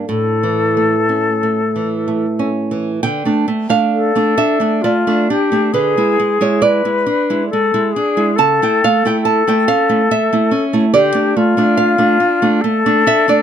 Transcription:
<<
  \new Staff \with { instrumentName = "Flute" } { \time 3/4 \key d \minor \tempo 4 = 68 a'2~ a'8 r8 | r4 a'4 f'8 g'8 | gis'4 b'4 a'8 gis'8 | a'4 a'4. r8 |
g'8 f'4. a'4 | }
  \new Staff \with { instrumentName = "Nylon-string guitar" } { \time 3/4 \key d \minor << { r2. | g''8. f''8. e''8 d''4 | b'8. cis''16 d''4. r8 | a''16 g''16 f''16 g''16 a''16 g''16 f''8 e''4 |
d''4 f''4. e''16 d''16 | } \\ { \tuplet 3/2 { a,8 e8 a8 cis'8 a8 e8 a8 cis'8 e8 } | d16 <a d'>16 a16 <a d'>8 <a d'>16 d'16 <a d'>16 a16 <a d'>16 d'16 <a d'>16 | d16 <gis e'>16 r16 <gis e'>8 <gis e'>16 d'16 <gis e'>16 gis16 <gis e'>16 d'16 <gis e'>16 | cis16 <a e'>16 a16 <a e'>8 <a e'>16 cis'16 <a e'>16 a16 <a e'>16 cis'16 <a e'>16 |
d16 <a d'>16 a16 <a d'>8 <a d'>16 d'16 <a d'>16 a16 <a d'>16 d'16 <a d'>16 | } >> }
>>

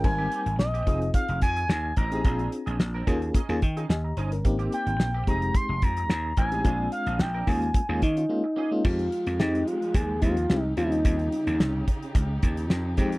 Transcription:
<<
  \new Staff \with { instrumentName = "Analog synth lead" } { \time 4/4 \key f \minor \tempo 4 = 109 aes''4 ees''4 f''8 aes''4 bes''8~ | bes''8 r2. r8 | r8 g''4 bes''8 c'''8 bes''4 aes''8~ | aes''8 f''8 g''8 aes''4 ees'4. |
f'4 ees'8 f'8 aes'8 f'4 ees'8~ | ees'4. r2 r8 | }
  \new Staff \with { instrumentName = "FM electric piano" } { \time 4/4 \key f \minor << { r1 | r2 r8 g''8 <g' ees'' aes''>16 bes''16 <ees' c''>16 <des' bes'>16~ | <des' bes'>16 r2. r8. | r1 |
r1 | r1 | } \\ { <g c' ees' bes'>4~ <g c' ees' bes'>16 r16 <c' ees' f' aes'>4. r8. <c' ees' g' aes'>16 | <c' d' aes'>4~ <c' d' aes'>16 r16 <bes des' f' aes'>8 r16 <bes des' f' aes'>16 r16 <f' aes'>16 r4 | <bes c' ees' g'>4~ <bes c' ees' g'>16 r16 <aes c' ees' g'>4. r8. <aes c' ees' g'>16 | <aes c' d' f'>4~ <aes c' d' f'>16 r16 <aes bes des' f'>8 r16 <aes bes des' f'>16 r16 <des' f'>16 <aes bes des' f'>16 r16 <des' f'>16 <aes bes des' f'>16 |
r4 <aes c' ees' g'>8. r8. <aes c' ees' g'>16 r16 <aes c' ees' g'>16 r16 <g c' des' f'>8~ | <g c' des' f'>4 r2 r8 <aes c' ees' g'>8 | } >> }
  \new Staff \with { instrumentName = "Clean electric guitar" } { \time 4/4 \key f \minor r16 <bes c' g'>16 <bes c' g'>16 r8 <bes c' g'>16 <c' ees' aes'>16 r4. r16 <c' ees' bes'>16 <c' ees' aes'>16 | <c' d' aes'>8 r16 <c' d' aes'>16 r16 <c' d' bes'>16 <des' ees' aes'>16 r16 <des' ees' aes'>16 r8 <des' ees' aes'>16 r8 <des' ees' aes'>16 r16 | r16 <bes c' g'>16 <bes c' g'>16 r8 <bes c' g'>16 <c' ees' aes'>16 r4. r16 <c' ees' bes'>16 <c' ees' aes'>16 | <c' d' aes'>8 r16 <c' d' aes'>16 r16 <c' d' bes'>16 <bes des' aes'>16 r8 <bes des' aes'>16 <bes des' aes'>16 r8. <bes des' aes'>16 r16 |
r1 | r1 | }
  \new Staff \with { instrumentName = "String section" } { \clef bass \time 4/4 \key f \minor << { r1 | r1 | r1 | r1 |
g'1~ | g'1 | } \\ { r1 | r1 | r1 | r1 |
<f aes ees'>2.~ <f aes ees'>8 des8~ | des2.~ des8 <f aes>8 | } >> }
  \new Staff \with { instrumentName = "Slap bass" } { \clef bass \time 4/4 \key f \minor aes,,8 r16 aes,,16 bes,,8 f,,8 r16 f,,16 f,8 ees,8 a,,8 | bes,,8 r16 bes,,16 bes,,8 ees,8 r16 ees,16 ees8 ees,8 g,,8 | aes,,8 r16 aes,,16 bes,,8 f,,8 r16 f,,16 f,8 ees,8 a,,8 | bes,,8 r16 bes,,16 bes,,8 ees,8 r16 ees,16 ees8 r4 |
f,8 r16 f,16 f,8 r8 ees,8 ees,8 c,8 ees,8 | ees,8 r16 ees,16 c,8 r8 des,8 ees,8 f,8 f,8 | }
  \new DrumStaff \with { instrumentName = "Drums" } \drummode { \time 4/4 <cymc bd>8 hh16 hh16 sn16 hh16 <hh bd>16 hh16 <hh bd>16 hh16 <hh bd>16 hh16 sn8 <hh bd>16 hh16 | <hh bd>16 hh16 hh16 hh16 sn8 <hh bd>16 hh16 <hh bd>16 hh16 <hh bd>16 hh16 sn8 hh16 hh16 | <hh bd>16 hh16 hh16 hh16 sn8 <hh bd>16 hh16 <hh bd>8 <hh bd>16 hh16 sn8 <hh bd>16 hh16 | <hh bd>8 hh16 hh16 sn8 <hho bd>16 hh16 <hh bd>8 <hh bd>16 hh16 r4 |
<cymc bd>16 hh16 hh16 hh16 sn16 hh16 hh16 hh16 <hh bd>8 <hh bd>16 hh16 sn8 hh16 hh16 | <hh bd>16 hh16 hh16 hh16 sn8 <hh bd>16 hh16 <hh bd>8 <hh bd>16 hh16 sn8 <hh bd>16 hh16 | }
>>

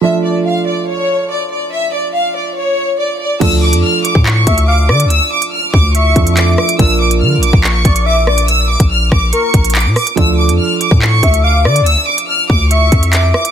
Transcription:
<<
  \new Staff \with { instrumentName = "Violin section" } { \time 4/4 \key d \minor \tempo 4 = 142 e''8 d''8 f''8 d''8 cis''4 d''8 d''8 | e''8 d''8 f''8 d''8 cis''4 d''8 d''8 | e'''8 d'''8 f'''8 d'''8 cis'''4 d'''8 d'''8 | e'''8 d'''8 f'''8 d'''8 cis'''4 d'''8 d'''8 |
e'''8 d'''8 f'''8 d'''8 cis'''4 d'''8 d'''8 | e'''8 d'''8 f'''8 d'''8 cis'''4 d'''8 d'''8 | e'''8 d'''8 f'''8 d'''8 cis'''4 d'''8 d'''8 | e'''8 d'''8 f'''8 d'''8 cis'''4 d'''8 d'''8 | }
  \new Staff \with { instrumentName = "Soft synth lead" } { \time 4/4 \key d \minor r1 | r1 | r2 r8 e''8 f''8 d''8 | r2 e''2 |
r2 r8 d''8 e''8 d''8 | r2 bes'4 r4 | r2 r8 e''8 f''8 d''8 | r2 e''2 | }
  \new Staff \with { instrumentName = "Grand piano" } { \time 4/4 \key d \minor <f a d' f'>1~ | <f a d' f'>1 | <f a d' f'>1~ | <f a d' f'>2~ <f a d' f'>8 <f a d' f'>4. |
<f bes d' f'>1~ | <f bes d' f'>1 | <f a d' f'>1~ | <f a d' f'>1 | }
  \new Staff \with { instrumentName = "808-style bass" } { \clef bass \time 4/4 \key d \minor r1 | r1 | d,8. f,16 r8. a,8. d,4 d16. d,32~ | d,16 r4 r16 d,4 f,4 r8 |
bes,,4 d16. bes,,16. bes,,8. bes,,4.~ | bes,,8. bes,,8. bes,,8 r8 bes,,8. bes,16 r8 | d,8. f,16 r8. a,8. d,4 d16. d,32~ | d,16 r4 r16 d,4 f,4 r8 | }
  \new DrumStaff \with { instrumentName = "Drums" } \drummode { \time 4/4 r4 r4 r4 r4 | r4 r4 r4 r4 | <cymc hh bd>8. hh16 r8 hh16 bd16 hc8 <hh bd>16 hh16 r8 ss16 hh16 | hh8. hh16 r8 bd8 hh8 <hh bd>16 hh16 <hc hh>8 ss16 hh16 |
<hh bd>8. hh16 r8 hh16 bd16 hc8 <hh bd>16 hh16 r8 ss16 hh16 | hh8. <hh bd>16 r8 <bd ss>8 hh8 <hh bd>16 hh32 hh32 <hc hh>32 hh16. <hho ss>16 hh16 | <hh bd>8. hh16 r8 hh16 bd16 hc8 <hh bd>16 hh16 r8 ss16 hh16 | hh8. hh16 r8 bd8 hh8 <hh bd>16 hh16 <hc hh>8 ss16 hh16 | }
>>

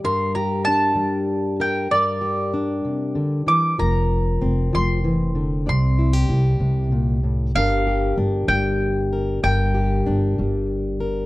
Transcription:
<<
  \new Staff \with { instrumentName = "Mandolin" } { \time 6/8 \key g \dorian \tempo 4. = 64 c'''8 bes''8 a''4. g''8 | d''2~ d''8 d'''8 | bes''4. c'''4. | c'''2 r4 |
f''4 r8 g''4. | g''2 r4 | }
  \new Staff \with { instrumentName = "Steel-string acoustic guitar" } { \time 6/8 \key g \dorian << { bes'8 g'8 d'4. bes'8 | bes'8 g'8 d'2 | bes'4 c'2 | d''8 e'16 g'16 e'2 |
<g d' g' bes'>8 g'8 d'4. bes'8 | bes'8 g'8 d'4. bes'8 | } \\ { <g, g>4. g4. | g,4. c8 d8 e8 | f4. f8 e8 d8 | c4. c8 bes,8 a,8 |
g,4. g4. | g,4. g4. | } >> }
  \new Staff \with { instrumentName = "Upright bass" } { \clef bass \time 6/8 \key g \dorian r2. | r2. | f,,4 f,,8 f,,4. | c,4 c,8 c,4. |
g,,4 g,,8 g,,4. | g,,4 g,,8 g,,4. | }
>>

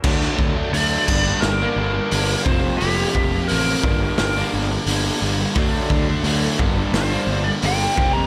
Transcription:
<<
  \new Staff \with { instrumentName = "Lead electric guitar" } { \time 4/4 \key g \minor \tempo 4 = 87 r4 d''4 bes'4. c''8 | g'4 bes'4 bes'8 r4. | r2 \tuplet 3/2 { c''4 d''8 g''4 bes''8 } | }
  \new Staff \with { instrumentName = "Distorted electric guitar" } { \clef bass \time 4/4 \key g \minor <d fis a d'>4 <d fis a d'>8 <g, d g bes d'>16 <g bes d'>8 <g bes d'>16 <d g bes d'>8 <g, d g bes d'>8 <f, c f bes c'>16 <f bes c'>16 | <f, c f bes c'>4 <f, c f bes c'>8 <g, d g bes d'>16 <g bes d'>8 <g bes d'>16 <d g bes d'>8 <g, d g bes d'>8 <d g bes d'>16 <g bes d'>16 | <d fis a d'>4 <d fis a d'>8 <g, d g bes d'>16 <g bes d'>8 <g bes d'>16 <d g bes d'>8 <g, d g bes d'>8 <f, c f bes c'>16 <f bes c'>16 | }
  \new Staff \with { instrumentName = "Distorted electric guitar" } { \clef bass \time 4/4 \key g \minor <d fis a d'>8. <fis a d'>16 <d fis a d'>8 <g, d g bes d'>8. <g bes d'>16 <d g bes d'>16 <g bes d'>16 <g, d g bes d'>8 <f, c f bes c'>8 | <f, c f bes c'>8. <f bes c'>16 <f, c f bes c'>8 <g, d g bes d'>8. <g bes d'>16 <d g bes d'>16 <g bes d'>16 <g, d g bes d'>8 <d g bes d'>8 | <d fis a d'>8. <fis a d'>16 <d fis a d'>8 <g, d g bes d'>8. <g bes d'>16 <d g bes d'>16 <g bes d'>16 <g, d g bes d'>8 <f, c f bes c'>8 | }
  \new Staff \with { instrumentName = "Overdriven electric guitar" } { \clef bass \time 4/4 \key g \minor r1 | r1 | <d a d'>4. <g, d g>2 <f, c f>8 | }
  \new Staff \with { instrumentName = "Fingered electric bass" } { \clef bass \time 4/4 \key g \minor d,8 d,8 d,8 g,,8 g,,8 g,,8 g,,8 f,,8 | f,,8 f,,8 a,,8 g,,8 g,,8 g,,8 g,,8 g,,8 | d,8 d,8 d,8 g,,8 g,,8 g,,8 g,,8 f,,8 | }
  \new DrumStaff \with { instrumentName = "Drums" } \drummode { \time 4/4 <cymc bd>16 sn16 bd8 hho8 <cymc bd>8 sn4 hho8 bd8 | hho8 bd8 hho8 bd8 <hho sn>4 hho4 | <hho bd>8 bd8 hho8 bd8 <hho sn>4 hho8 bd8 | }
>>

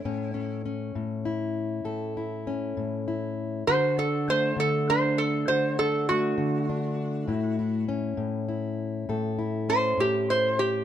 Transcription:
<<
  \new Staff \with { instrumentName = "Resonator guitar played with a steel bar" } { \time 12/8 \key a \major \tempo 4. = 66 e'4 r1 r4 | c''8 a'8 c''8 a'8 c''8 a'8 c''8 a'8 fis'2~ | fis'4 r2. c''8 g'8 c''8 g'8 | }
  \new Staff \with { instrumentName = "Steel-string acoustic guitar" } { \time 12/8 \key a \major << { <e cis'>8 cis'8 cis'4 e'4 a'8 e'8 cis'4 e'4 | fis'8 d'8 a4 d'4 fis'8 d'8 a4 d'4 | e'8 e'8 cis'4 e'4 a'8 e'8 cis'4 e'4 | } \\ { a,4. a,4. a,4. a,4. | d4. d4. d4. d4. | a,4. a,4. a,4. a,4. | } >> }
>>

